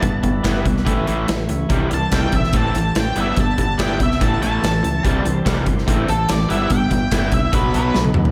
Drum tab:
HH |x-x-x-x-x-x-x-x-|x-x-x-x-x-x-x-x-|x-x-x-x-x-x-x-x-|x-x-x-x-x-x-x-x-|
SD |----o--o----o---|----o--o----o---|----o--o----o---|----o--o----o---|
T1 |----------------|----------------|----------------|----------------|
T2 |----------------|----------------|----------------|----------------|
FT |----------------|----------------|----------------|----------------|
BD |o-o-o-o-o-------|o---o-o-o-------|o-o-o-o-o-------|o---o-o-o-------|

HH |x-x-x-x-x-x-----|
SD |----o-------o---|
T1 |-------------o--|
T2 |--------------o-|
FT |---------------o|
BD |o-o-o-o-o-------|